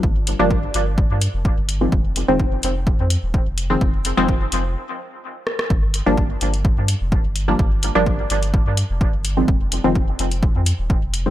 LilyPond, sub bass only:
\new Staff \with { instrumentName = "Sub bass" } { \clef bass \time 4/4 \key g \phrygian \tempo 4 = 127 g,,8. g,,8. g,,8. g,8 f,,8 g,,8. | f,,8. f,,8. f,,8. f,8 ees,,8 f,,8. | f,,8. f,,8. f,,8 r2 | g,,8. g,,8. g,,8. g,8 f,,8 g,,8. |
g,,8. g,,8. g,,8. g,8 f,,8 g,,8. | f,,8. f,,8. f,,8. f,8 ees,,8 f,,8. | }